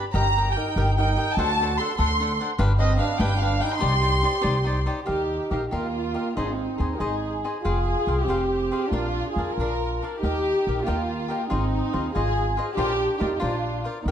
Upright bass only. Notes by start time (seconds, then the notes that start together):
0.14 G1
0.76 G1
1.37 D2
1.99 D2
2.59 G1
3.19 G1
3.82 C2
4.44 C2
5.08 D#2
5.51 A#1
5.72 D#2
6.37 G#1
6.80 D#2
7.00 G#1
7.65 F1
8.07 C2
8.27 F1
8.92 A#1
9.36 F2
9.57 A#1
10.23 D#2
10.67 A#1
10.88 D#2
11.51 G#1
11.94 D#2
12.16 G#1
12.77 A#1
13.21 F2
13.42 A#1
14.06 D#2